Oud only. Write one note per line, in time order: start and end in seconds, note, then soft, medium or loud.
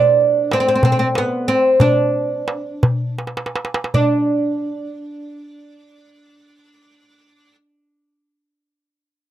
0.00 0.53 D4 medium
0.53 0.59 C4 medium
0.60 0.67 C4 medium
0.68 0.74 C4 medium
0.75 0.83 C4 medium
0.85 0.91 C4 medium
0.92 0.98 C4 medium
0.99 1.06 C4 medium
1.18 1.50 B3 medium
1.48 1.81 C4 medium
1.81 3.15 D4 medium
3.94 7.55 D4 medium